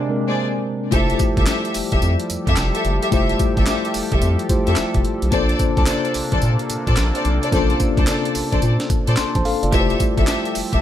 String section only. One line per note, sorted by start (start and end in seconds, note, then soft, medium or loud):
0.28 0.42 A#3 medium
0.28 0.42 G#4 medium
0.28 0.42 C5 medium
0.28 0.42 D5 medium
0.92 1.13 G4 loud
0.92 1.13 A4 loud
0.92 1.13 E5 loud
1.37 1.46 G4 medium
1.37 1.46 A4 medium
1.37 1.46 E5 medium
1.47 1.67 G4 medium
1.47 1.68 A4 medium
1.47 1.68 E5 medium
1.92 2.07 G4 medium
1.92 2.07 A4 medium
1.92 2.07 E5 medium
2.47 2.62 G4 medium
2.47 2.62 A4 medium
2.47 2.62 E5 medium
2.75 2.89 G4 medium
2.75 2.90 A4 medium
2.75 2.90 E5 medium
3.02 3.11 G4 medium
3.02 3.11 A4 medium
3.02 3.11 E5 medium
3.12 3.32 G4 loud
3.12 3.33 A4 medium
3.12 3.33 E5 loud
3.57 3.66 G4 medium
3.57 3.66 A4 medium
3.57 3.66 E5 medium
3.67 3.88 G4 medium
3.67 3.88 A4 medium
3.67 3.88 E5 medium
4.12 4.27 G4 medium
4.12 4.27 A4 medium
4.12 4.27 E5 medium
4.67 4.82 G4 medium
4.67 4.82 A4 medium
4.67 4.82 E5 medium
5.32 5.53 A4 loud
5.32 5.53 C5 medium
5.32 5.53 D5 loud
5.77 5.86 A4 medium
5.77 5.86 C5 medium
5.77 5.86 D5 medium
5.87 6.08 A4 medium
5.87 6.08 C5 medium
5.87 6.08 D5 medium
6.32 6.47 A4 medium
6.32 6.47 C5 medium
6.32 6.48 D5 medium
6.87 7.02 A4 medium
6.87 7.02 C5 medium
6.87 7.03 D5 medium
7.15 7.30 A4 medium
7.15 7.30 C5 medium
7.15 7.30 D5 medium
7.42 7.51 A4 medium
7.42 7.51 C5 medium
7.42 7.51 D5 medium
7.52 7.73 A4 loud
7.52 7.73 C5 loud
7.52 7.73 D5 loud
7.97 8.06 A4 medium
7.97 8.07 C5 medium
7.97 8.07 D5 medium
8.07 8.28 A4 medium
8.07 8.28 C5 medium
8.07 8.28 D5 medium
8.52 8.67 A4 medium
8.52 8.67 C5 medium
8.52 8.67 D5 medium
9.07 9.22 A4 medium
9.07 9.22 C5 medium
9.07 9.23 D5 medium
9.72 9.93 G4 loud
9.72 9.93 A4 medium
9.72 9.93 E5 loud
10.18 10.26 G4 medium
10.18 10.26 A4 medium
10.18 10.27 E5 medium
10.27 10.48 G4 medium
10.27 10.48 A4 medium
10.27 10.48 E5 medium
10.72 10.82 G4 medium
10.72 10.82 A4 medium
10.72 10.82 E5 medium